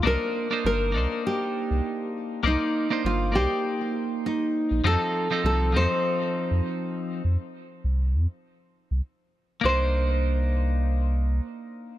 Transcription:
X:1
M:4/4
L:1/16
Q:"Swing 16ths" 1/4=100
K:Cdor
V:1 name="Nylon-string guitar"
B4 B4 G6 z2 | E4 F2 G4 z2 E4 | A4 A2 c8- c2- | c12 z4 |
c16 |]
V:2 name="Clean electric guitar"
[B,DEc]3 [B,DEc]3 [B,DEc]8- [B,DEc]2 | [B,Ecd]3 [B,DEc]3 [B,Ecd]8- [B,Ecd]2 | [F,CEA]3 [F,CEA]3 [F,CEA]8- [F,CEA]2 | z16 |
[B,DEc]16 |]
V:3 name="Sub bass" clef=bass
C,, z3 G,,,2 C,, z4 C,, z4 | C,, z3 G,,,2 C,, z8 B,,, | F,, z3 C,,2 F,, z4 F,, z4 | F,, z3 C,,2 F,, z4 C,, z4 |
C,,12 z4 |]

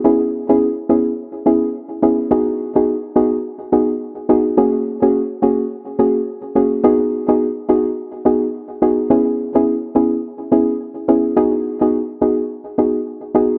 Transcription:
X:1
M:4/4
L:1/16
Q:"Swing 16ths" 1/4=106
K:G#m
V:1 name="Synth pluck"
[B,CEG]3 [B,CEG] z2 [B,CEG]2 z2 [B,CEG]2 z2 [B,CEG]2 | [B,DFG]3 [B,DFG] z2 [B,DFG]2 z2 [B,DFG]2 z2 [B,DFG]2 | [A,CFG]3 [A,CFG] z2 [A,CFG]2 z2 [A,CFG]2 z2 [A,CFG]2 | [B,DFG]3 [B,DFG] z2 [B,DFG]2 z2 [B,DFG]2 z2 [B,DFG]2 |
[B,CEG]3 [B,CEG] z2 [B,CEG]2 z2 [B,CEG]2 z2 [B,CEG]2 | [B,DFG]3 [B,DFG] z2 [B,DFG]2 z2 [B,DFG]2 z2 [B,DFG]2 |]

